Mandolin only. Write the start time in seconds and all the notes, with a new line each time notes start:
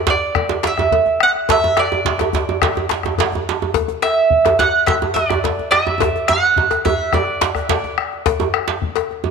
0.10 D5
0.67 E5
1.23 F#5
1.52 E5
1.79 D5
4.02 E5
4.59 F#5
4.86 E5
5.14 D5
5.71 E5
6.28 F#5
6.85 E5
7.14 D5